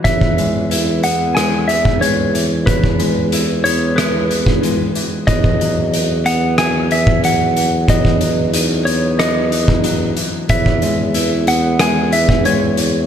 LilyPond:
<<
  \new Staff \with { instrumentName = "Electric slide guitar" } { \time 4/4 \key e \major \tempo 4 = 92 e''4. fis''8 gis''8 e''8 cis''4 | b'4 r8 cis''8 b'4. r8 | dis''4. fis''8 gis''8 e''8 fis''4 | dis''4 r8 cis''8 dis''4. r8 |
e''4. fis''8 gis''8 e''8 cis''4 | }
  \new Staff \with { instrumentName = "Vibraphone" } { \time 4/4 \key e \major cis''4 b'4 r8 b'4 r8 | cis''8 b'4 cis''8 b'4 r4 | cis''4 b'4 r8 b'4 r8 | cis''8 b'4 cis''8 b'4 r4 |
cis''4 b'4 r8 b'4 r8 | }
  \new Staff \with { instrumentName = "Clean electric guitar" } { \clef bass \time 4/4 \key e \major e8 gis8 e'8 b8 gis8 e8 gis8 e8 | e8 gis8 e'8 b8 gis8 e8 gis8 e8 | e8 fis4 b8 fis8 e8 fis8 e8 | e8 fis8 dis'8 b8 fis8 e8 fis8 e8 |
e8 gis8 e'8 b8 gis8 e8 gis8 e8 | }
  \new Staff \with { instrumentName = "Tuba" } { \clef bass \time 4/4 \key e \major e,1~ | e,2.~ e,8 r8 | e,1~ | e,2.~ e,8 r8 |
e,1 | }
  \new DrumStaff \with { instrumentName = "Drums" } \drummode { \time 4/4 <hh bd>16 bd16 hh8 hh8 hh8 <hh ss>8 hh16 bd16 hh8 hh8 | <hh bd>16 bd16 hh8 hh8 hh8 <hh ss>8 hh16 bd16 hh8 hh8 | <hh bd>16 bd16 hh8 hh8 hh8 <hh ss>8 hh16 bd16 hh8 hh8 | <hh bd>16 bd16 hh8 hh8 hh8 <hh ss>8 hh16 bd16 hh8 hh8 |
<hh bd>16 bd16 hh8 hh8 hh8 <hh ss>8 hh16 bd16 hh8 hh8 | }
>>